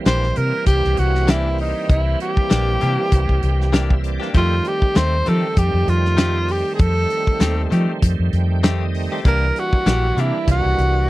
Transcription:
Already playing: E3 G3 A#3 C4
0.05 A#1 E3 A#3 D4 G4 C5, snare, closed hi-hat
0.23 snare
0.36 C3 A#4, closed hi-hat
0.66 C2 G4, kick, closed hi-hat
0.84 C2, snare
0.97 C2 F#4, closed hi-hat
1.15 snare
1.28 E3 A#3 D4 E4 G4, snare, closed hi-hat
1.58 D#4, open hi-hat
1.89 C2 E4, kick, closed hi-hat
2.20 G4, closed hi-hat
2.37 kick
2.50 A#1 E3 A#3 D4 G4, snare, closed hi-hat
2.80 C3 E3 A#3 D4 G4, closed hi-hat
3.12 C2, kick, closed hi-hat
3.29 C2, kick
3.43 C2 G5, closed hi-hat
3.61 snare
3.73 E3 A#3 D4 G4 E5, snare, closed hi-hat
3.90 kick
4.04 D5, closed hi-hat
4.20 A#3 D4 G4, snare
4.33 F2 D#3 G3 A3 C4 G4, kick, closed hi-hat
4.37 F4
4.65 G4, closed hi-hat
4.82 kick
4.95 D#2 D#3 A3 C4 G4 C5, snare, closed hi-hat
5.25 D#3 F3 A3 C4 G4 A4, closed hi-hat
5.57 F2 G4, kick, closed hi-hat
5.74 F2
5.88 F2 F4, closed hi-hat
6.05 snare
6.17 D#3 A3 C4 G4, snare, closed hi-hat
6.48 G4, open hi-hat
6.75 G#4
6.79 F2 A4, kick, closed hi-hat
7.10 closed hi-hat
7.27 kick
7.40 D#2 D#3 A3 C4 G4, snare, closed hi-hat
7.70 D#3 F3 A3 C4 G4, closed hi-hat
8.02 F2, kick, closed hi-hat
8.19 F2
8.33 F2 G5, closed hi-hat
8.62 D#3 A3 C4 G4 D#5, snare, closed hi-hat
8.94 open hi-hat
9.12 A3 C4 G4
9.23 C2 E3 G3 A#3 D4, kick, closed hi-hat
9.27 G4 A#4
9.56 F#4, closed hi-hat
9.73 kick
9.86 A#1 E3 A#3 D4 G4, snare, closed hi-hat
10.17 C3 E3 A#3 D4 E4 G4, closed hi-hat
10.47 C2 F#4, kick, closed hi-hat
10.65 C2
10.78 C2, closed hi-hat

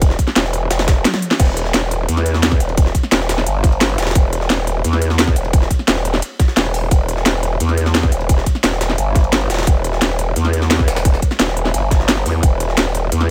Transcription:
Already playing: E1
0.02 kick, closed hi-hat, ride
0.10 snare
0.19 kick, closed hi-hat, ride
0.27 snare
0.36 E1, snare, closed hi-hat, ride
0.45 snare
0.53 closed hi-hat, ride
0.71 F1, snare, closed hi-hat, ride
0.79 snare, ride
0.88 kick, snare, closed hi-hat, ride
1.05 snare, closed hi-hat, high tom, ride
1.14 snare, high tom, ride
1.22 closed hi-hat
1.31 snare, ride
1.40 E1, kick, closed hi-hat, crash, ride
1.57 closed hi-hat, ride
1.65 snare
1.74 E1, snare, closed hi-hat, ride
1.91 closed hi-hat, ride
2.09 E2, closed hi-hat, ride
2.17 snare, ride
2.26 closed hi-hat, ride
2.34 snare
2.43 snare, closed hi-hat, ride
2.52 kick, snare
2.60 E1, closed hi-hat, ride
2.69 ride
2.77 kick, closed hi-hat, ride
2.86 snare
2.95 kick, closed hi-hat, ride
3.03 snare
3.12 E1, snare, closed hi-hat, ride
3.21 snare
3.29 snare, closed hi-hat, ride
3.38 snare
3.46 G1, closed hi-hat, ride
3.64 kick, closed hi-hat, ride
3.72 ride
3.81 snare, closed hi-hat, ride
3.90 ride
3.98 E1, snare, closed hi-hat, ride
4.02 snare, ride
4.07 snare, ride
4.11 snare, ride
4.15 kick, closed hi-hat, ride
4.33 closed hi-hat, ride
4.41 snare
4.50 E1, snare, closed hi-hat, ride
4.67 closed hi-hat, ride
4.84 E2, closed hi-hat, ride
4.93 snare, ride
5.02 closed hi-hat, ride
5.10 snare
5.19 snare, closed hi-hat, ride
5.27 kick, snare
5.36 E1, closed hi-hat, ride
5.45 ride
5.53 kick, closed hi-hat, ride
5.62 snare
5.71 kick, closed hi-hat, ride
5.79 snare
5.88 E1, snare, closed hi-hat, ride
5.96 snare
6.05 closed hi-hat, ride
6.14 snare
6.22 closed hi-hat, ride
6.40 kick, snare, closed hi-hat, ride
6.48 snare
6.57 E1, snare, closed hi-hat, ride
6.65 ride
6.74 closed hi-hat, open hi-hat
6.91 E1, kick, closed hi-hat, ride
7.09 closed hi-hat, ride
7.17 snare
7.26 E1, snare, closed hi-hat, ride
7.43 closed hi-hat, ride
7.60 E2, closed hi-hat, ride
7.69 snare, ride
7.77 closed hi-hat, ride
7.86 snare
7.95 snare, closed hi-hat, ride
8.03 kick, snare
8.12 E1, closed hi-hat, ride
8.21 ride
8.29 kick, closed hi-hat, ride
8.38 snare
8.46 kick, closed hi-hat, ride
8.55 snare
8.64 E1, snare, closed hi-hat, ride
8.72 snare
8.81 snare, closed hi-hat, ride
8.90 snare
8.98 G1, closed hi-hat, ride
9.15 kick, closed hi-hat, ride
9.24 ride
9.33 snare, closed hi-hat, ride
9.41 ride
9.50 E1, snare, closed hi-hat, ride
9.54 snare, ride
9.59 snare, ride
9.63 snare, ride
9.67 E1, kick, closed hi-hat, ride
9.84 closed hi-hat, ride
9.93 snare
10.02 E1, snare, closed hi-hat, ride
10.19 closed hi-hat, ride
10.36 E2, closed hi-hat, ride
10.45 snare, ride
10.53 closed hi-hat, ride
10.62 snare
10.71 snare, closed hi-hat, ride
10.79 kick, snare
10.88 E1, snare, closed hi-hat, ride
10.96 snare, ride
11.05 kick, closed hi-hat, ride
11.14 snare
11.22 kick, closed hi-hat, ride
11.31 snare
11.40 E1, snare, closed hi-hat, ride
11.48 snare
11.57 closed hi-hat
11.65 snare
11.74 G1, closed hi-hat, ride
11.91 kick, snare, closed hi-hat, ride
12.00 snare
12.09 snare, closed hi-hat, ride
12.17 ride
12.26 E2, closed hi-hat, open hi-hat
12.43 E1, kick, closed hi-hat, ride
12.60 closed hi-hat, ride
12.69 snare
12.77 E1, snare, closed hi-hat, ride
12.95 closed hi-hat, ride
13.12 E2, closed hi-hat, ride
13.21 snare, ride

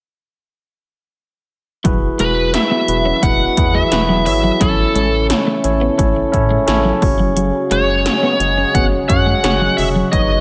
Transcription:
1.84 E1 E3 F#3 G#3 B3 E4 F#4 G#4 B4, kick, closed hi-hat
2.19 E1 G#3 E4 F#4 G#4 B4, closed hi-hat
2.37 muted clean electric guitar stroke
2.53 E4 F#4 G#4 B4 E5, snare, closed hi-hat
2.71 B3
2.88 E1 E4 F#4 G#4 B4, muted clean electric guitar stroke, closed hi-hat
3.06 C#4
3.22 E1 B3 E4 F#4 G#4 B4 F#5, kick, closed hi-hat
3.40 muted clean electric guitar stroke
3.57 E2 E4 F#4 G#4 B4, kick, closed hi-hat
3.74 G#3 E5
3.91 E1 E4 F#4 G#4 B4, snare, closed hi-hat
4.09 F#3
4.26 G#1 E4 F#4 G#4 C#5 E5, muted clean electric guitar stroke, open hi-hat
4.44 F#3
4.60 A1 C#3 F#3 A3 C#4 E4 A4 C#5, kick, closed hi-hat
4.94 A1 G#3 C#4 E4 A4 C#5, closed hi-hat
5.13 muted clean electric guitar stroke
5.29 C#4 E4 A4 C#5, snare, closed hi-hat
5.47 A3
5.63 A1 C#4 E4 A4 C#5, muted clean electric guitar stroke, closed hi-hat
5.81 B3
5.98 A1 A3 C#4 E4 A4 C#5, kick, closed hi-hat
6.16 muted clean electric guitar stroke
6.32 A2 C#4 E4 A4 C#5, kick, closed hi-hat
6.51 G#3
6.67 A1 C#4 E4 A4 C#5, snare, closed hi-hat
6.85 F#3
7.01 F#1 F#3 G#3 C#4 F#4 G#4 C#5, muted clean electric guitar stroke, kick, open hi-hat
7.19 F#3
7.37 F#3, closed hi-hat
7.71 F#1 G#3 C#4 F#4 G#4 C#5, closed hi-hat
7.88 muted clean electric guitar stroke
8.05 C#4 F#4 G#4 C#5, snare, closed hi-hat
8.23 B3
8.39 F#1 C#4 F#4 G#4 C#5, muted clean electric guitar stroke, closed hi-hat
8.58 C#4
8.74 F#1 B3 C#4 F#4 G#4 C#5 F#5, kick, closed hi-hat
8.92 muted clean electric guitar stroke
9.08 F#2 C#4 F#4 G#4 C#5 F#5, kick, closed hi-hat
9.27 G#3
9.43 F#1 C#4 F#4 G#4 C#5, snare, closed hi-hat
9.61 F#3
9.77 F1 C#4 F#4 G#4 C#5 E5, open hi-hat
9.96 F#3
10.12 F#1 F#3 B3 D#4 F#4 B4 C#5 D#5, kick, closed hi-hat

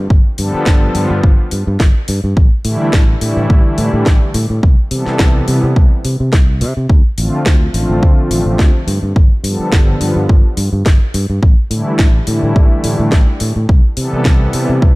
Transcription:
0.10 G1, kick
0.38 G2 D3 F3 G3 B3 A4, open hi-hat
0.54 muted fingered electric bass stroke
0.66 G1, kick, snare
0.95 G2 D3 F3 G3 B3 F4, open hi-hat
1.10 G2
1.23 G1, kick
1.51 G2, open hi-hat
1.67 G2
1.80 G1, kick, snare, open hi-hat
2.08 G2, open hi-hat
2.24 G2
2.37 A1, kick
2.65 A2 D3 E3 G3 A3 E4, open hi-hat
2.93 A1, kick, snare
3.21 A2 D3 E3 G3 A3 E4, open hi-hat
3.37 A2
3.50 A1, kick
3.65 D3 E3 G3 A3 E4
3.78 A2, open hi-hat
3.93 A2 D3 E3 G3 A3 G4
4.06 A1, kick, snare
4.34 A2, open hi-hat
4.50 A2
4.63 C2, kick
4.91 C3 E3 G3 B3 A4, open hi-hat
5.06 muted fingered electric bass stroke, snare
5.19 C2, kick, snare
5.48 C3 E3 G3 B3 E4, open hi-hat
5.64 C3
5.76 C2, kick
6.05 C3, open hi-hat
6.20 C3
6.33 C2, kick, snare, open hi-hat
6.61 C3, open hi-hat
6.77 C3
6.89 D2, kick
7.17 A1 D3 F3 A3 C4 F4, open hi-hat
7.46 D2, kick, snare
7.74 A1 D3 F3 A3 C4 F4, open hi-hat
7.89 A1
8.03 D2, kick
8.17 D3 F3 A3 C4 F4
8.30 A1, open hi-hat
8.46 A1 D3 F3 A3 C4 G4
8.59 D2, kick, snare
8.87 G2, open hi-hat
9.03 G2
9.16 G1, kick
9.44 G2 D3 F3 G3 B3 A4, open hi-hat
9.59 muted fingered electric bass stroke
9.72 G1, kick, snare
10.01 G2 D3 F3 G3 B3 F4, open hi-hat
10.16 G2
10.29 G1, kick
10.57 G2, open hi-hat
10.73 G2
10.86 G1, kick, snare, open hi-hat
11.14 G2, open hi-hat
11.30 G2
11.43 A1, kick
11.71 A2 D3 E3 G3 A3 E4, open hi-hat
11.99 A1, kick, snare
12.27 A2 D3 E3 G3 A3 E4, open hi-hat
12.43 A2
12.56 A1, kick
12.71 D3 E3 G3 A3 E4
12.84 A2, open hi-hat
12.99 A2 D3 E3 G3 A3 G4
13.12 A1, kick, snare
13.40 A2, open hi-hat
13.56 A2
13.69 C2, kick
13.97 C3 E3 G3 B3 A4, open hi-hat
14.13 muted fingered electric bass stroke
14.25 C2, kick, snare
14.53 C3 E3 G3 B3 E4, open hi-hat
14.69 C3
14.82 C2, kick

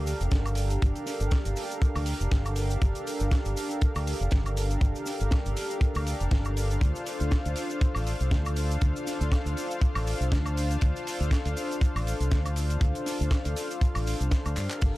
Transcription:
Already playing: D2 D4 G4 A4 A#4 F5
0.07 open hi-hat, cabasa
0.21 F1, closed hi-hat, cabasa
0.31 G1, kick, snare, closed hi-hat, cabasa
0.46 closed hi-hat, cabasa, high woodblock
0.55 D4 G4 A4 A#4 F5, open hi-hat, cabasa
0.70 closed hi-hat, cabasa
0.82 G1, kick, closed hi-hat, cabasa
0.96 closed hi-hat, cabasa
1.06 D4 G4 A4 A#4 F5, snare, open hi-hat, cabasa
1.20 G1, closed hi-hat, cabasa
1.31 kick, snare, closed hi-hat, cabasa, high woodblock
1.45 G1, closed hi-hat, cabasa
1.56 open hi-hat, cabasa
1.71 closed hi-hat, cabasa
1.82 kick, closed hi-hat, cabasa
1.96 D2, open hi-hat, cabasa, high woodblock
2.06 open hi-hat, cabasa
2.21 F1, closed hi-hat, cabasa
2.31 kick, snare, closed hi-hat, cabasa
2.46 closed hi-hat, cabasa, high woodblock
2.56 D4 G4 A4 A#4 F5, open hi-hat, cabasa
2.70 closed hi-hat, cabasa
2.82 G1, kick, closed hi-hat, cabasa
2.95 closed hi-hat, cabasa
3.06 D4 G4 A4 A#4 F5, open hi-hat, cabasa
3.20 G1, closed hi-hat, cabasa
3.31 kick, snare, closed hi-hat, cabasa, high woodblock
3.45 G1, closed hi-hat, cabasa
3.57 open hi-hat, cabasa
3.71 closed hi-hat, cabasa
3.81 muted fingered electric bass stroke, kick, closed hi-hat, cabasa
3.96 D2, open hi-hat, cabasa, high woodblock
4.07 open hi-hat, cabasa
4.20 F1, closed hi-hat, cabasa
4.31 G1, kick, snare, closed hi-hat, cabasa
4.46 closed hi-hat, cabasa, high woodblock
4.56 D4 G4 A4 A#4 F5, open hi-hat, cabasa
4.71 closed hi-hat, cabasa
4.81 G1, kick, closed hi-hat, cabasa
4.95 closed hi-hat, cabasa
5.06 D4 G4 A4 A#4 F5, snare, open hi-hat, cabasa
5.20 G1, closed hi-hat, cabasa
5.31 kick, snare, closed hi-hat, cabasa, high woodblock
5.46 G1, closed hi-hat, cabasa
5.57 open hi-hat, cabasa
5.70 closed hi-hat, cabasa
5.81 kick, closed hi-hat, cabasa
5.95 D2, open hi-hat, cabasa, high woodblock
6.07 open hi-hat, cabasa
6.20 F1, closed hi-hat, cabasa
6.31 G1, kick, snare, closed hi-hat, cabasa
6.45 closed hi-hat, cabasa, high woodblock
6.56 D4 F4 A4 C5 F5, open hi-hat, cabasa
6.71 closed hi-hat, cabasa
6.81 D2, kick, closed hi-hat, cabasa
6.95 closed hi-hat, cabasa
7.06 D4 F4 A4 C5 F5, open hi-hat, cabasa
7.20 D2, closed hi-hat, cabasa
7.31 kick, snare, closed hi-hat, cabasa, high woodblock
7.46 D2, closed hi-hat, cabasa
7.56 open hi-hat, cabasa
7.70 closed hi-hat, cabasa
7.81 muted fingered electric bass stroke, kick, closed hi-hat, cabasa
7.95 A1, open hi-hat, cabasa, high woodblock
8.07 open hi-hat, cabasa
8.20 C2, closed hi-hat, cabasa
8.31 D2, kick, snare, closed hi-hat, cabasa
8.45 closed hi-hat, cabasa, high woodblock
8.56 D4 F4 A4 C5 F5, open hi-hat, cabasa
8.71 closed hi-hat, cabasa
8.81 D2, kick, closed hi-hat, cabasa
8.96 closed hi-hat, cabasa
9.06 D4 F4 A4 C5 F5, snare, open hi-hat, cabasa
9.21 D2, closed hi-hat, cabasa
9.32 kick, snare, closed hi-hat, cabasa, high woodblock
9.46 D2, closed hi-hat, cabasa
9.57 open hi-hat, cabasa
9.71 closed hi-hat, cabasa
9.81 kick, closed hi-hat, cabasa
9.95 A1, open hi-hat, cabasa, high woodblock
10.07 open hi-hat, cabasa
10.21 C2, closed hi-hat, cabasa
10.32 D2, kick, snare, closed hi-hat, cabasa
10.46 closed hi-hat, cabasa, high woodblock
10.56 D4 F4 A4 C5 F5, open hi-hat, cabasa
10.71 closed hi-hat, cabasa
10.81 D2, kick, closed hi-hat, cabasa
10.96 closed hi-hat, cabasa
11.06 D4 F4 A4 C5 F5, open hi-hat, cabasa
11.20 D2, closed hi-hat, cabasa
11.31 kick, snare, closed hi-hat, cabasa, high woodblock
11.45 D2, closed hi-hat, cabasa
11.57 open hi-hat, cabasa
11.71 closed hi-hat, cabasa
11.81 muted fingered electric bass stroke, kick, closed hi-hat, cabasa
11.96 A1, open hi-hat, cabasa, high woodblock
12.07 open hi-hat, cabasa
12.20 C2, closed hi-hat, cabasa
12.31 D2, kick, snare, closed hi-hat, cabasa
12.46 closed hi-hat, cabasa, high woodblock
12.56 D4 F4 A4 C5 F5, open hi-hat, cabasa
12.70 closed hi-hat, cabasa
12.81 D2, kick, closed hi-hat, cabasa
12.95 closed hi-hat, cabasa
13.06 D4 F4 A4 C5 F5, snare, open hi-hat, cabasa
13.21 D2, closed hi-hat, cabasa
13.31 kick, snare, closed hi-hat, cabasa, high woodblock
13.45 D2, closed hi-hat, cabasa
13.56 open hi-hat, cabasa
13.71 closed hi-hat, cabasa
13.81 kick, closed hi-hat, cabasa
13.95 A1, open hi-hat, cabasa, high woodblock
14.07 open hi-hat, cabasa
14.21 C2, closed hi-hat, cabasa
14.31 kick, snare, closed hi-hat, cabasa
14.46 D2, closed hi-hat, cabasa, high woodblock
14.56 G2 D4 G4 A4 A#4 F5, clap, open hi-hat, cabasa
14.70 clap, closed hi-hat, cabasa
14.81 G1, kick, closed hi-hat, crash, cabasa

